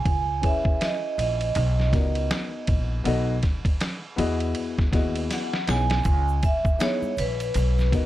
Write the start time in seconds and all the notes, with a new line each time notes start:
Already playing: G#5
0.05 C#2, kick, ride
0.41 C#4 E4 G#4 B4 C#5, kick, ride
0.46 E5
0.65 kick
0.81 D#5, snare, hi-hat pedal, ride
1.18 A#1 D#5, ride
1.41 ride
1.55 B1, ride
1.80 snare
1.92 C#2 B3 D#4 F#4 A#4 D5, kick, snare, ride
2.01 D#5
2.15 ride
2.31 snare, hi-hat pedal, ride
2.67 A#1, kick, ride
3.04 B1 B3 D#4 F#4 A4 D#5, ride
3.43 kick, snare, ride
3.65 kick, ride
3.81 snare, hi-hat pedal, ride
4.16 E2 B3 E4 F#4 G#4 D#5, ride
4.40 ride
4.55 ride
4.79 kick, snare
4.92 D#2 B3 E4 F#4 G#4 D#5, kick, snare, ride
5.15 ride
5.31 F#5, snare, hi-hat pedal, ride
5.54 snare
5.66 B1 B3 D#4 E4 G#4 C#5 G#5, snare, ride
5.90 snare, ride
6.04 C#2, kick, ride, shaker
6.28 shaker
6.43 E5, kick, ride, shaker
6.65 kick, shaker
6.79 B3 D#4 E4 G#4 C#5, snare, hi-hat pedal, ride, shaker
7.02 high conga, shaker
7.17 A#1 B4, ride, low conga, shaker
7.40 ride, shaker
7.54 B1, ride, shaker
7.78 snare, shaker
7.91 C#2 B3 D#4 F#4 A#4 D#5, kick, snare, ride, low conga, shaker